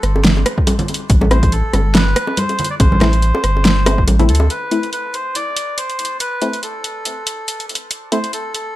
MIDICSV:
0, 0, Header, 1, 5, 480
1, 0, Start_track
1, 0, Key_signature, 0, "minor"
1, 0, Tempo, 425532
1, 1237, Time_signature, 4, 2, 24, 8
1, 9880, End_track
2, 0, Start_track
2, 0, Title_t, "Melodica"
2, 0, Program_c, 0, 22
2, 0, Note_on_c, 0, 69, 77
2, 245, Note_off_c, 0, 69, 0
2, 1480, Note_on_c, 0, 72, 92
2, 1719, Note_on_c, 0, 69, 88
2, 1726, Note_off_c, 0, 72, 0
2, 2201, Note_on_c, 0, 71, 104
2, 2212, Note_off_c, 0, 69, 0
2, 2680, Note_on_c, 0, 72, 103
2, 2694, Note_off_c, 0, 71, 0
2, 3027, Note_off_c, 0, 72, 0
2, 3052, Note_on_c, 0, 74, 108
2, 3100, Note_off_c, 0, 74, 0
2, 3158, Note_on_c, 0, 72, 112
2, 4553, Note_off_c, 0, 72, 0
2, 4841, Note_on_c, 0, 69, 90
2, 5082, Note_on_c, 0, 71, 91
2, 5087, Note_off_c, 0, 69, 0
2, 5526, Note_off_c, 0, 71, 0
2, 5561, Note_on_c, 0, 71, 84
2, 5802, Note_on_c, 0, 72, 85
2, 5807, Note_off_c, 0, 71, 0
2, 6040, Note_on_c, 0, 74, 101
2, 6047, Note_off_c, 0, 72, 0
2, 6520, Note_on_c, 0, 72, 88
2, 6533, Note_off_c, 0, 74, 0
2, 6965, Note_off_c, 0, 72, 0
2, 6999, Note_on_c, 0, 71, 91
2, 7445, Note_off_c, 0, 71, 0
2, 7484, Note_on_c, 0, 69, 73
2, 8636, Note_off_c, 0, 69, 0
2, 9164, Note_on_c, 0, 72, 84
2, 9384, Note_off_c, 0, 72, 0
2, 9403, Note_on_c, 0, 69, 82
2, 9625, Note_off_c, 0, 69, 0
2, 9642, Note_on_c, 0, 69, 81
2, 9880, Note_off_c, 0, 69, 0
2, 9880, End_track
3, 0, Start_track
3, 0, Title_t, "Synth stab"
3, 0, Program_c, 1, 62
3, 1477, Note_on_c, 1, 57, 100
3, 1477, Note_on_c, 1, 60, 89
3, 1477, Note_on_c, 1, 64, 109
3, 1555, Note_off_c, 1, 60, 0
3, 1555, Note_off_c, 1, 64, 0
3, 1556, Note_off_c, 1, 57, 0
3, 3397, Note_on_c, 1, 57, 103
3, 3397, Note_on_c, 1, 60, 90
3, 3397, Note_on_c, 1, 64, 111
3, 3475, Note_off_c, 1, 60, 0
3, 3475, Note_off_c, 1, 64, 0
3, 3476, Note_off_c, 1, 57, 0
3, 4357, Note_on_c, 1, 60, 72
3, 4358, Note_on_c, 1, 57, 78
3, 4358, Note_on_c, 1, 64, 83
3, 4482, Note_off_c, 1, 60, 0
3, 4483, Note_off_c, 1, 57, 0
3, 4483, Note_off_c, 1, 64, 0
3, 4731, Note_on_c, 1, 57, 98
3, 4731, Note_on_c, 1, 60, 90
3, 4731, Note_on_c, 1, 64, 112
3, 4830, Note_off_c, 1, 57, 0
3, 4830, Note_off_c, 1, 60, 0
3, 4830, Note_off_c, 1, 64, 0
3, 5318, Note_on_c, 1, 57, 90
3, 5319, Note_on_c, 1, 60, 83
3, 5319, Note_on_c, 1, 64, 103
3, 5396, Note_off_c, 1, 57, 0
3, 5396, Note_off_c, 1, 60, 0
3, 5396, Note_off_c, 1, 64, 0
3, 7237, Note_on_c, 1, 57, 93
3, 7238, Note_on_c, 1, 60, 82
3, 7238, Note_on_c, 1, 64, 102
3, 7316, Note_off_c, 1, 57, 0
3, 7316, Note_off_c, 1, 60, 0
3, 7316, Note_off_c, 1, 64, 0
3, 9159, Note_on_c, 1, 57, 89
3, 9159, Note_on_c, 1, 60, 82
3, 9160, Note_on_c, 1, 64, 102
3, 9236, Note_off_c, 1, 57, 0
3, 9237, Note_off_c, 1, 60, 0
3, 9237, Note_off_c, 1, 64, 0
3, 9880, End_track
4, 0, Start_track
4, 0, Title_t, "Sub bass"
4, 0, Program_c, 2, 38
4, 35, Note_on_c, 2, 31, 89
4, 503, Note_off_c, 2, 31, 0
4, 1238, Note_on_c, 2, 33, 102
4, 1834, Note_off_c, 2, 33, 0
4, 1957, Note_on_c, 2, 31, 87
4, 2424, Note_off_c, 2, 31, 0
4, 3157, Note_on_c, 2, 33, 104
4, 3754, Note_off_c, 2, 33, 0
4, 3878, Note_on_c, 2, 31, 88
4, 4597, Note_on_c, 2, 33, 102
4, 4614, Note_off_c, 2, 31, 0
4, 4837, Note_on_c, 2, 38, 81
4, 4854, Note_off_c, 2, 33, 0
4, 5060, Note_off_c, 2, 38, 0
4, 9880, End_track
5, 0, Start_track
5, 0, Title_t, "Drums"
5, 36, Note_on_c, 9, 37, 52
5, 36, Note_on_c, 9, 42, 52
5, 149, Note_off_c, 9, 37, 0
5, 149, Note_off_c, 9, 42, 0
5, 176, Note_on_c, 9, 60, 77
5, 277, Note_on_c, 9, 38, 118
5, 277, Note_on_c, 9, 42, 74
5, 289, Note_off_c, 9, 60, 0
5, 389, Note_off_c, 9, 38, 0
5, 389, Note_off_c, 9, 42, 0
5, 417, Note_on_c, 9, 60, 57
5, 517, Note_on_c, 9, 37, 81
5, 517, Note_on_c, 9, 42, 78
5, 530, Note_off_c, 9, 60, 0
5, 630, Note_off_c, 9, 37, 0
5, 630, Note_off_c, 9, 42, 0
5, 651, Note_on_c, 9, 36, 60
5, 756, Note_on_c, 9, 42, 78
5, 757, Note_on_c, 9, 60, 82
5, 759, Note_on_c, 9, 63, 94
5, 764, Note_off_c, 9, 36, 0
5, 869, Note_off_c, 9, 42, 0
5, 869, Note_off_c, 9, 60, 0
5, 872, Note_off_c, 9, 63, 0
5, 889, Note_on_c, 9, 64, 95
5, 891, Note_on_c, 9, 42, 36
5, 997, Note_off_c, 9, 42, 0
5, 997, Note_on_c, 9, 42, 50
5, 1002, Note_off_c, 9, 64, 0
5, 1009, Note_on_c, 9, 60, 54
5, 1063, Note_off_c, 9, 42, 0
5, 1063, Note_on_c, 9, 42, 64
5, 1122, Note_off_c, 9, 60, 0
5, 1176, Note_off_c, 9, 42, 0
5, 1237, Note_on_c, 9, 36, 116
5, 1237, Note_on_c, 9, 42, 80
5, 1350, Note_off_c, 9, 36, 0
5, 1350, Note_off_c, 9, 42, 0
5, 1366, Note_on_c, 9, 63, 84
5, 1370, Note_on_c, 9, 60, 82
5, 1477, Note_on_c, 9, 37, 87
5, 1477, Note_on_c, 9, 42, 54
5, 1479, Note_off_c, 9, 63, 0
5, 1483, Note_off_c, 9, 60, 0
5, 1590, Note_off_c, 9, 37, 0
5, 1590, Note_off_c, 9, 42, 0
5, 1611, Note_on_c, 9, 36, 60
5, 1612, Note_on_c, 9, 42, 36
5, 1622, Note_on_c, 9, 60, 51
5, 1717, Note_off_c, 9, 42, 0
5, 1717, Note_on_c, 9, 42, 51
5, 1724, Note_off_c, 9, 36, 0
5, 1735, Note_off_c, 9, 60, 0
5, 1830, Note_off_c, 9, 42, 0
5, 1957, Note_on_c, 9, 37, 54
5, 1957, Note_on_c, 9, 42, 51
5, 1957, Note_on_c, 9, 60, 83
5, 1963, Note_on_c, 9, 63, 64
5, 2069, Note_off_c, 9, 60, 0
5, 2070, Note_off_c, 9, 37, 0
5, 2070, Note_off_c, 9, 42, 0
5, 2076, Note_off_c, 9, 63, 0
5, 2197, Note_on_c, 9, 38, 117
5, 2197, Note_on_c, 9, 42, 78
5, 2201, Note_on_c, 9, 60, 50
5, 2309, Note_off_c, 9, 38, 0
5, 2309, Note_off_c, 9, 42, 0
5, 2314, Note_off_c, 9, 60, 0
5, 2438, Note_on_c, 9, 37, 85
5, 2438, Note_on_c, 9, 42, 80
5, 2550, Note_off_c, 9, 37, 0
5, 2550, Note_off_c, 9, 42, 0
5, 2565, Note_on_c, 9, 60, 79
5, 2677, Note_on_c, 9, 42, 80
5, 2678, Note_off_c, 9, 60, 0
5, 2680, Note_on_c, 9, 63, 83
5, 2789, Note_off_c, 9, 42, 0
5, 2792, Note_off_c, 9, 63, 0
5, 2811, Note_on_c, 9, 42, 37
5, 2813, Note_on_c, 9, 60, 54
5, 2918, Note_off_c, 9, 42, 0
5, 2918, Note_on_c, 9, 42, 51
5, 2926, Note_off_c, 9, 60, 0
5, 2927, Note_on_c, 9, 64, 78
5, 2984, Note_off_c, 9, 42, 0
5, 2984, Note_on_c, 9, 42, 65
5, 3040, Note_off_c, 9, 64, 0
5, 3096, Note_off_c, 9, 42, 0
5, 3157, Note_on_c, 9, 36, 120
5, 3157, Note_on_c, 9, 42, 79
5, 3162, Note_on_c, 9, 60, 77
5, 3270, Note_off_c, 9, 36, 0
5, 3270, Note_off_c, 9, 42, 0
5, 3275, Note_off_c, 9, 60, 0
5, 3294, Note_on_c, 9, 64, 81
5, 3295, Note_on_c, 9, 63, 90
5, 3397, Note_on_c, 9, 37, 89
5, 3397, Note_on_c, 9, 38, 61
5, 3397, Note_on_c, 9, 42, 55
5, 3403, Note_on_c, 9, 60, 55
5, 3407, Note_off_c, 9, 63, 0
5, 3407, Note_off_c, 9, 64, 0
5, 3510, Note_off_c, 9, 37, 0
5, 3510, Note_off_c, 9, 38, 0
5, 3510, Note_off_c, 9, 42, 0
5, 3516, Note_off_c, 9, 60, 0
5, 3531, Note_on_c, 9, 42, 37
5, 3637, Note_off_c, 9, 42, 0
5, 3637, Note_on_c, 9, 42, 54
5, 3750, Note_off_c, 9, 42, 0
5, 3775, Note_on_c, 9, 60, 91
5, 3877, Note_on_c, 9, 37, 56
5, 3877, Note_on_c, 9, 42, 54
5, 3888, Note_off_c, 9, 60, 0
5, 3990, Note_off_c, 9, 37, 0
5, 3990, Note_off_c, 9, 42, 0
5, 4022, Note_on_c, 9, 60, 56
5, 4118, Note_on_c, 9, 38, 113
5, 4118, Note_on_c, 9, 42, 83
5, 4134, Note_off_c, 9, 60, 0
5, 4230, Note_off_c, 9, 38, 0
5, 4230, Note_off_c, 9, 42, 0
5, 4357, Note_on_c, 9, 60, 93
5, 4358, Note_on_c, 9, 37, 87
5, 4358, Note_on_c, 9, 42, 83
5, 4470, Note_off_c, 9, 60, 0
5, 4471, Note_off_c, 9, 37, 0
5, 4471, Note_off_c, 9, 42, 0
5, 4492, Note_on_c, 9, 36, 60
5, 4596, Note_on_c, 9, 60, 61
5, 4598, Note_on_c, 9, 42, 84
5, 4603, Note_on_c, 9, 63, 84
5, 4605, Note_off_c, 9, 36, 0
5, 4709, Note_off_c, 9, 60, 0
5, 4710, Note_off_c, 9, 42, 0
5, 4716, Note_off_c, 9, 63, 0
5, 4731, Note_on_c, 9, 42, 38
5, 4734, Note_on_c, 9, 64, 95
5, 4837, Note_off_c, 9, 42, 0
5, 4837, Note_on_c, 9, 42, 53
5, 4847, Note_off_c, 9, 64, 0
5, 4904, Note_off_c, 9, 42, 0
5, 4904, Note_on_c, 9, 42, 68
5, 4961, Note_on_c, 9, 60, 83
5, 5017, Note_off_c, 9, 42, 0
5, 5074, Note_off_c, 9, 60, 0
5, 5078, Note_on_c, 9, 42, 72
5, 5190, Note_off_c, 9, 42, 0
5, 5318, Note_on_c, 9, 42, 49
5, 5430, Note_off_c, 9, 42, 0
5, 5451, Note_on_c, 9, 42, 34
5, 5558, Note_off_c, 9, 42, 0
5, 5558, Note_on_c, 9, 42, 47
5, 5670, Note_off_c, 9, 42, 0
5, 5797, Note_on_c, 9, 42, 45
5, 5910, Note_off_c, 9, 42, 0
5, 6037, Note_on_c, 9, 42, 68
5, 6150, Note_off_c, 9, 42, 0
5, 6277, Note_on_c, 9, 42, 70
5, 6390, Note_off_c, 9, 42, 0
5, 6517, Note_on_c, 9, 42, 75
5, 6630, Note_off_c, 9, 42, 0
5, 6650, Note_on_c, 9, 42, 34
5, 6756, Note_off_c, 9, 42, 0
5, 6756, Note_on_c, 9, 42, 45
5, 6823, Note_off_c, 9, 42, 0
5, 6823, Note_on_c, 9, 42, 60
5, 6936, Note_off_c, 9, 42, 0
5, 6996, Note_on_c, 9, 42, 72
5, 7109, Note_off_c, 9, 42, 0
5, 7237, Note_on_c, 9, 42, 48
5, 7350, Note_off_c, 9, 42, 0
5, 7371, Note_on_c, 9, 42, 34
5, 7477, Note_off_c, 9, 42, 0
5, 7477, Note_on_c, 9, 42, 47
5, 7590, Note_off_c, 9, 42, 0
5, 7718, Note_on_c, 9, 42, 49
5, 7831, Note_off_c, 9, 42, 0
5, 7957, Note_on_c, 9, 42, 71
5, 8069, Note_off_c, 9, 42, 0
5, 8197, Note_on_c, 9, 42, 75
5, 8310, Note_off_c, 9, 42, 0
5, 8438, Note_on_c, 9, 42, 75
5, 8551, Note_off_c, 9, 42, 0
5, 8573, Note_on_c, 9, 42, 35
5, 8679, Note_off_c, 9, 42, 0
5, 8679, Note_on_c, 9, 42, 46
5, 8745, Note_off_c, 9, 42, 0
5, 8745, Note_on_c, 9, 42, 61
5, 8858, Note_off_c, 9, 42, 0
5, 8919, Note_on_c, 9, 42, 72
5, 9032, Note_off_c, 9, 42, 0
5, 9159, Note_on_c, 9, 42, 49
5, 9272, Note_off_c, 9, 42, 0
5, 9293, Note_on_c, 9, 42, 33
5, 9398, Note_off_c, 9, 42, 0
5, 9398, Note_on_c, 9, 42, 50
5, 9511, Note_off_c, 9, 42, 0
5, 9639, Note_on_c, 9, 42, 48
5, 9752, Note_off_c, 9, 42, 0
5, 9880, End_track
0, 0, End_of_file